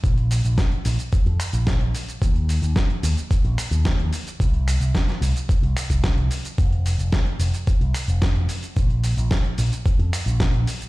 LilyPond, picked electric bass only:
\new Staff \with { instrumentName = "Picked electric bass" } { \clef bass \time 4/4 \key bes \major \tempo 4 = 110 bes,,8. bes,,16 r8 bes,,16 r8 f,16 r16 bes,,8 bes,,16 r8 | ees,8. ees,16 r8 ees,16 r8 bes,,16 r16 ees,8 ees,16 r8 | c,8. c,16 r8 c,16 r8 c,16 r16 c,8 c,16 r8 | f,,8. f,,16 r8 f,,16 r8 c,16 r16 f,,8 f,,16 r8 |
bes,,8. bes,,16 r8 bes,,16 r8 f,16 r16 bes,,8 bes,,16 r8 | }